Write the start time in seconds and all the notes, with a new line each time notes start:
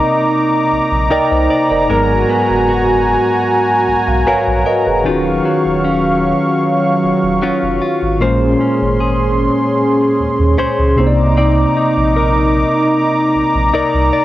Already playing: C3 A#3 C4 D#4 A#4 D5 A#5 D6
0.72 A#1
0.91 A#1
1.10 C2 D#4 A#4 D5 D#5 G5
1.31 C2 C5 D#5
1.50 D5
1.70 F1 A#4 D5
1.88 G#1 G#2 F#3 G#3 B3 F#4 A#4 G#5
1.93 A#4
2.29 B3
2.50 F#1
2.69 F#4
3.88 B1
4.08 B1 F5 G#5
4.27 A#1 B3 F#4 A#4 C#5 F5
4.47 A#1
4.66 A#4 B4 D#5
4.86 F1 G#4 B4
5.04 D#1 D#3 F#3 C#4 F4 F5 C#6
5.08 F#4
5.45 F#3
5.65 D#1
5.84 C#4
7.03 D#1
7.23 D#1
7.42 F1 F#3 C#4 F4
7.63 F1
7.82 F4
8.02 G#1
8.19 A#1 A#2 G#3 A#3 C#4 G#4 C5 C6
8.24 C5
8.61 C#4
8.81 G#1
9.00 G#4
10.19 D#2
10.39 D#2
10.58 C#2 C#4 G#4 C5
10.78 C#2
10.96 C2 C3 A#3 C4 D#4 A#5 D6
11.00 C5
11.07 D5
11.37 C4 D5
11.77 D#4
11.97 A#1
12.16 A#4
13.35 A#1
13.55 A#1
13.74 C2 D#4 A#4 D5
13.94 C2
14.13 D5